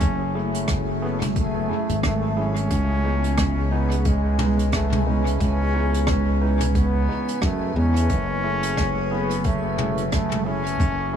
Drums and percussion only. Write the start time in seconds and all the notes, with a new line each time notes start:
0.00 kick, closed hi-hat
0.55 closed hi-hat
0.68 kick, cross-stick, closed hi-hat
1.22 closed hi-hat, mid tom
1.36 kick, closed hi-hat
1.89 closed hi-hat
2.03 kick, cross-stick, closed hi-hat
2.56 closed hi-hat
2.70 kick, closed hi-hat
3.24 closed hi-hat
3.37 kick, cross-stick, closed hi-hat
3.92 closed hi-hat
4.05 kick, closed hi-hat
4.39 mid tom
4.59 closed hi-hat
4.72 kick, cross-stick, closed hi-hat
4.92 mid tom
5.27 closed hi-hat
5.40 kick, closed hi-hat
5.94 closed hi-hat
6.07 kick, cross-stick, closed hi-hat
6.60 closed hi-hat, mid tom
6.75 kick, closed hi-hat
7.28 closed hi-hat
7.42 kick, cross-stick, closed hi-hat
7.96 closed hi-hat
8.09 kick, closed hi-hat
8.63 closed hi-hat
8.77 kick, cross-stick, closed hi-hat
9.31 closed hi-hat
9.44 kick, closed hi-hat
9.78 mid tom
9.98 closed hi-hat
10.12 kick, cross-stick, closed hi-hat
10.32 mid tom
10.66 closed hi-hat
10.80 kick, closed hi-hat